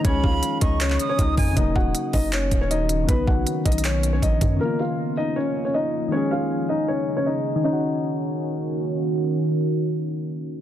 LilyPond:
<<
  \new Staff \with { instrumentName = "Flute" } { \time 4/4 \key ees \minor \tempo 4 = 158 ces'''4. des'''4 ees'''4 aes''8 | r1 | r1 | r1 |
r1 | r1 | r1 | }
  \new Staff \with { instrumentName = "Grand piano" } { \time 4/4 \key ees \minor <des' des''>8 <f' f''>4 <ees' ees''>8 <des' des''>8. <des' des''>16 <ees' ees''>4 | <ees' ees''>8 <ges' ges''>4 <ees' ees''>8 <des' des''>8. <des' des''>16 <ees' ees''>4 | <b b'>8 <fis' fis''>4 <dis' dis''>8 <cis' cis''>8. <cis' cis''>16 <dis' dis''>4 | <bes bes'>8 <f' f''>4 <ees' ees''>8 <des' des''>8. <des' des''>16 <ees' ees''>4 |
<des' des''>8 <f' f''>4 <ees' ees''>8 <des' des''>8. <des' des''>16 <ees' ees''>4 | ees'2. r4 | r1 | }
  \new Staff \with { instrumentName = "Ambient pad" } { \time 4/4 \key ees \minor << { <des' ees' aes'>1 | <bes des' ges'>1 | b1 | <f bes>1 |
<des' ees' aes'>1 | <ees bes des' ges'>1~ | <ees bes des' ges'>1 | } \\ { des1 | ees1~ | ees1 | r1 |
des1 | r1 | r1 | } >> }
  \new Staff \with { instrumentName = "Synth keys" } { \time 4/4 \key ees \minor <ees aes des' aes'>1 | <des ges bes ees'>1 | <cis fis b dis'>1 | <des f bes f'>1 |
<ees aes des' aes'>1 | <ees des' ges'>1~ | <ees des' ges'>1 | }
  \new Staff \with { instrumentName = "808-style bass" } { \clef bass \time 4/4 \key ees \minor des,8 des,8 r8 des,4 r8 des,8 f,8 | ees,,8 ees,,8 r8 ges,,4 ees,,4. | b,,8 b,,8 r8 b,,4. bes,,8 fis,8 | r1 |
r1 | r1 | r1 | }
  \new DrumStaff \with { instrumentName = "Drums" } \drummode { \time 4/4 <hh bd>8 bd8 hh8 <hh bd>8 <hc hh>16 hc16 hh8 <hh bd>8 <hho bd>8 | <hh bd>8 bd8 hh8 <hho bd>8 <hc hh>8 <hh bd>8 hh8 hh8 | <hh bd>8 bd8 \tuplet 3/2 { hh16 r16 r16 <hh bd>16 hh16 hh16 } <hc hh>8 hh8 <hh bd>8 <hh bd>8 | r4 r4 r4 r4 |
r4 r4 r4 r4 | r4 r4 r4 r4 | r4 r4 r4 r4 | }
>>